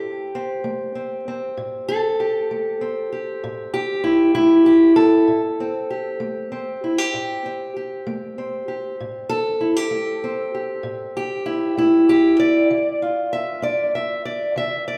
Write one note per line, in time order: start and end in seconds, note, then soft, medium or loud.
0.00 0.26 A2 medium
0.00 0.35 C4 soft
0.00 1.88 G4 medium
0.35 0.95 C4 soft
0.64 1.20 A3 medium
0.95 1.27 C4 soft
1.28 2.81 C4 soft
1.57 2.13 A2 medium
1.88 3.73 A4 loud
2.20 3.12 G4 soft
2.51 3.06 A3 soft
2.81 5.60 C4 soft
3.12 3.74 G4 soft
3.44 3.99 A2 medium
3.74 4.65 G4 medium
4.04 4.33 E4 medium
4.35 4.91 A3 medium
4.35 5.28 E4 medium
4.66 4.96 G4 medium
4.96 6.20 A4 loud
5.28 5.83 A2 medium
5.60 6.51 C4 soft
5.90 6.83 G4 soft
6.20 6.76 A3 medium
6.52 7.45 C4 soft
6.84 6.98 E4 soft
6.98 7.75 G4 soft
7.14 7.69 A2 medium
7.46 8.38 C4 soft
7.77 8.67 G4 soft
8.07 8.62 A3 medium
8.38 10.23 C4 soft
8.68 8.95 G4 soft
9.00 9.55 A2 medium
9.29 11.15 A4 loud
9.61 9.76 E4 soft
9.76 10.53 G4 soft
9.91 10.47 A3 medium
10.24 13.02 C4 soft
10.54 11.15 G4 soft
10.83 11.39 A2 medium
11.17 12.08 G4 medium
11.46 11.77 E4 medium
11.77 12.33 A3 medium
11.77 12.71 E4 medium
12.09 12.39 G4 loud
12.40 13.01 D5 medium
12.70 13.26 D3 medium
13.02 14.98 F4 soft
13.33 13.63 E5 medium
13.62 14.18 D4 medium
13.62 13.94 D5 medium
13.95 14.25 E5 medium
14.25 14.56 D5 medium
14.56 14.98 D3 medium
14.56 14.87 E5 medium
14.88 14.98 D5 medium